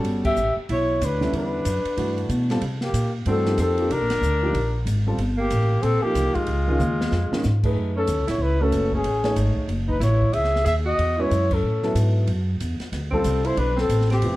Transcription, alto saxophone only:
0.25 G4
0.70 E4
1.02 D4
1.35 D4
2.83 A#3
3.27 C4
3.60 C4
3.91 D4
5.37 A#3
5.82 C4
6.02 A#3
6.34 G#3
7.97 C#4
8.27 E4
8.41 E4
8.60 C#4
8.94 C#4
9.88 D#4
10.00 E4
10.33 G#4
10.64 G#4
10.85 F#4
11.17 E4
11.52 C#4
13.11 C4
13.45 E4
13.57 D4
13.76 C4
14.11 C4

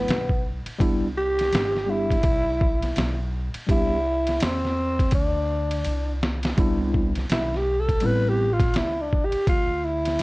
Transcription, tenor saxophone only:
Already playing: B3
1.18 G4
1.90 E4
3.71 E4
4.43 C4
5.15 D4
7.33 E4
7.57 G4
7.80 A4
8.06 B4
8.29 G4
8.53 F4
8.78 E4
9.01 D4
9.25 G4
9.49 F4
9.85 E4

